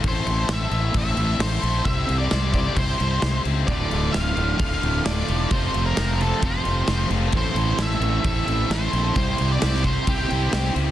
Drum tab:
CC |x-x-x-x-x-x-x-x-|x-x-x-x-x-x-x-x-|x-x-x-x-x-x-x-x-|x-x-x-x-x-x-x-x-|
SD |----o-------o---|----o-------o---|----o-------o---|----o-------o---|
BD |o-------o-------|o-----o-o-------|o-------o-------|o-------o-------|

CC |x-x-x-x-x-x-x-x-|x-x-x-x-x-x-x-x-|
SD |----oo------o---|----oo------o---|
BD |o-------o-------|o-----o-o-------|